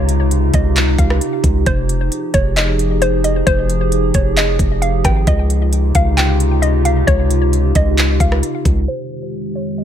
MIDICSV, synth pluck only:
0, 0, Header, 1, 2, 480
1, 0, Start_track
1, 0, Key_signature, -4, "minor"
1, 0, Tempo, 451128
1, 1770, Time_signature, 4, 2, 24, 8
1, 10470, End_track
2, 0, Start_track
2, 0, Title_t, "Synth pluck"
2, 0, Program_c, 0, 84
2, 0, Note_on_c, 0, 73, 108
2, 525, Note_off_c, 0, 73, 0
2, 576, Note_on_c, 0, 75, 76
2, 1025, Note_off_c, 0, 75, 0
2, 1048, Note_on_c, 0, 77, 71
2, 1277, Note_off_c, 0, 77, 0
2, 1772, Note_on_c, 0, 72, 104
2, 2449, Note_off_c, 0, 72, 0
2, 2488, Note_on_c, 0, 73, 87
2, 2717, Note_off_c, 0, 73, 0
2, 2730, Note_on_c, 0, 75, 82
2, 3181, Note_off_c, 0, 75, 0
2, 3210, Note_on_c, 0, 72, 100
2, 3438, Note_off_c, 0, 72, 0
2, 3449, Note_on_c, 0, 75, 88
2, 3678, Note_off_c, 0, 75, 0
2, 3688, Note_on_c, 0, 72, 114
2, 4366, Note_off_c, 0, 72, 0
2, 4410, Note_on_c, 0, 73, 78
2, 4638, Note_off_c, 0, 73, 0
2, 4652, Note_on_c, 0, 75, 85
2, 5102, Note_off_c, 0, 75, 0
2, 5126, Note_on_c, 0, 77, 79
2, 5356, Note_off_c, 0, 77, 0
2, 5370, Note_on_c, 0, 79, 89
2, 5598, Note_off_c, 0, 79, 0
2, 5613, Note_on_c, 0, 75, 100
2, 6289, Note_off_c, 0, 75, 0
2, 6333, Note_on_c, 0, 77, 80
2, 6559, Note_off_c, 0, 77, 0
2, 6565, Note_on_c, 0, 79, 88
2, 7018, Note_off_c, 0, 79, 0
2, 7044, Note_on_c, 0, 75, 83
2, 7275, Note_off_c, 0, 75, 0
2, 7290, Note_on_c, 0, 77, 77
2, 7518, Note_off_c, 0, 77, 0
2, 7525, Note_on_c, 0, 73, 106
2, 8205, Note_off_c, 0, 73, 0
2, 8256, Note_on_c, 0, 75, 77
2, 8704, Note_off_c, 0, 75, 0
2, 8727, Note_on_c, 0, 77, 73
2, 8957, Note_off_c, 0, 77, 0
2, 9450, Note_on_c, 0, 72, 98
2, 10128, Note_off_c, 0, 72, 0
2, 10165, Note_on_c, 0, 73, 82
2, 10396, Note_off_c, 0, 73, 0
2, 10406, Note_on_c, 0, 75, 79
2, 10470, Note_off_c, 0, 75, 0
2, 10470, End_track
0, 0, End_of_file